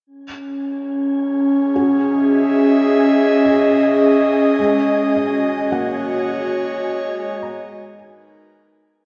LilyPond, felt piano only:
<<
  \new Staff \with { instrumentName = "Felt piano" } { \time 4/4 \key cis \dorian \tempo 4 = 53 << { r1 | r8 dis''4 r4. gis''4 | } \\ { r4. fis'4. gis'4~ | gis'2 r2 | } >> }
  \new Staff \with { instrumentName = "Felt piano" } { \time 4/4 \key cis \dorian r1 | gis4 <ais fis''>4. <b ais''>4. | }
>>